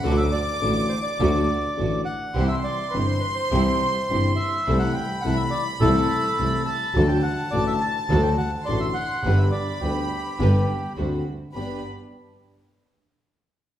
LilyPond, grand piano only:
\new Staff \with { instrumentName = "Grand piano" } { \clef bass \time 4/4 \key g \major \tempo 4 = 104 <d, d fis a fis'>8 r8 <a,, a, d fis a fis'>8 r8 <d, d fis a fis'>8 r8 <a,, a, d fis a fis'>8 r8 | <c, c e g e'>8 r8 <g,, g, c e g e'>8 r8 <c, c e g e'>8 r8 <g,, g, c e g e'>8 r8 | <c, c e a e'>8 r8 <c, c e a e'>8 r8 <c, c e a e'>8 r8 <c, c e a e'>8 r8 | <d, d fis a fis'>8 r8 <a,, a, d fis a fis'>8 r8 <d, d fis a fis'>8 r8 <a,, a, d fis a fis'>8 r8 |
<g,, g, d g b g'>8 r8 <d, d g b g'>8 r8 <g,, g, d g b g'>8 r8 <d, d a c' fis'>8 r8 | <g, b d' g'>8 r2. r8 | }